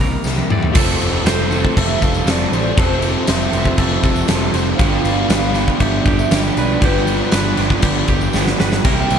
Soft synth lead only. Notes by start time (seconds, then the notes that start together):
Already playing: C5
0.75 A4
1.78 E5
2.02 F5
2.30 D5
2.79 C5
3.29 E5
4.77 F5
5.81 E5
6.34 D5
6.85 B4
8.85 G5